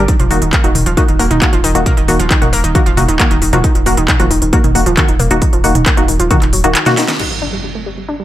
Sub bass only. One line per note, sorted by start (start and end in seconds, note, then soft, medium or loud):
0.20 0.30 D#1 medium
0.31 0.41 D#1 loud
0.42 0.53 D#1 medium
0.64 0.74 D#1 medium
0.75 0.86 D#1 loud
0.86 0.97 D#1 medium
1.08 1.19 D#1 medium
1.19 1.30 D#1 loud
1.31 1.41 D#1 medium
1.53 1.63 D#1 medium
1.64 1.74 D#1 medium
1.75 1.86 D#1 medium
1.97 2.08 D#1 medium
2.08 2.19 D#1 loud
2.19 2.30 D#1 medium
2.42 2.52 D#1 medium
2.53 2.63 D#1 loud
2.64 2.75 D#1 medium
2.86 2.97 D#1 medium
2.97 3.08 D#1 loud
3.08 3.19 D#1 medium
3.31 3.41 D#1 medium
3.42 3.52 D#1 loud
3.53 3.64 D#1 medium
3.75 3.86 D#1 medium
3.86 3.97 D#1 loud
3.97 4.08 D#1 medium
4.20 4.30 D#1 medium
4.31 4.41 D#1 loud
4.42 4.53 D#1 medium
4.64 4.74 D#1 medium
4.75 4.86 D#1 loud
4.86 4.97 D#1 medium
5.08 5.19 D#1 medium
5.20 5.30 D#1 loud
5.31 5.42 D#1 medium
5.53 5.63 D#1 medium
5.64 5.75 D#1 loud
5.75 5.86 D#1 medium
5.97 6.08 D#1 medium
6.08 6.19 D#1 loud
6.20 6.30 D#1 medium
6.42 6.52 D#1 medium
6.53 6.64 D#1 loud
6.64 6.75 D#1 medium